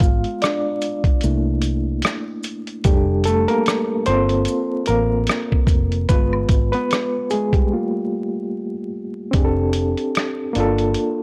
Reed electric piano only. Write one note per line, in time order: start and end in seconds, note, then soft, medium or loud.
0.00 0.79 G#3 medium
0.00 0.79 B3 soft
0.00 0.39 F4 medium
0.00 0.44 F5 loud
0.42 1.20 D4 medium
0.42 1.19 D5 medium
1.23 1.79 A3 medium
1.23 1.79 A#3 medium
1.23 1.79 D4 soft
1.23 1.80 E4 medium
2.85 3.24 G3 medium
2.85 4.04 D4 medium
2.85 3.27 G4 medium
2.85 3.24 A4 medium
3.25 3.48 A3 medium
3.25 3.49 A4 loud
3.48 4.04 A#3 medium
3.48 4.08 A#4 loud
4.06 4.89 A#3 medium
4.06 4.85 C4 medium
4.06 5.25 F4 medium
4.06 5.25 A4 medium
4.06 4.84 C5 loud
4.88 6.07 A#3 medium
4.88 6.13 A#4 medium
6.09 7.32 G#3 medium
6.09 6.70 B3 medium
6.09 7.68 F4 medium
6.09 6.71 B4 loud
6.72 7.28 B3 medium
6.72 7.32 B4 loud
7.31 7.53 G#3 medium
7.31 7.54 G#4 medium
7.53 8.72 G3 medium
7.53 8.71 G4 medium
7.72 8.90 A3 medium
7.72 8.90 A#3 medium
7.72 8.90 F4 medium
9.31 10.42 C4 medium
9.31 10.44 D4 medium
9.36 10.45 G4 medium
9.36 9.43 G#4 medium
9.45 10.49 A4 medium
10.53 11.21 A#3 medium
10.53 11.22 D4 medium
10.58 11.23 F4 medium
10.58 11.23 A4 loud